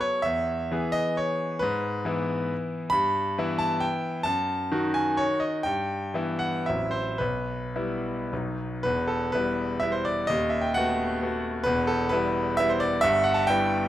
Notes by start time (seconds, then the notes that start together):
Already playing: F#3 B3 A4
0.01 C#5
0.22 E2 E5
0.71 E3 B3 G#4
0.92 D#5
1.17 C#5
1.59 G#2 B4
2.05 E3 B3 E4
2.90 G2 B5
3.38 E3 B3 E4
3.59 A5
3.80 G5
4.23 F#2 A5
4.71 D#3 D#4 F#4
4.94 G#5
5.17 C#5
5.40 D#5
5.63 G2 G5
6.14 E3 B3 E4
6.39 F#5
6.66 A1 F#3 C4 E4 E5
6.91 C5
7.18 B1 B4
7.76 G3 B3 E4
8.33 B1 F#3 B3 D#4
8.83 E1 E2 B4
9.07 A4
9.32 G3 B3 E4 B4
9.80 G3 B3 E4 E5
9.92 C5
10.05 D5
10.27 D#1 D#2 D#5
10.50 E5
10.61 G5
10.74 A3 B3 F#4 F#5
11.22 A3 B3 F#4
11.64 E1 E2 B4
11.87 A4
12.09 G3 B3 E4 B4
12.57 G3 B3 E4 E5
12.69 C5
12.80 D5
13.01 G1 G2 E5
13.24 F#5
13.34 A5
13.47 G3 B3 E4 G5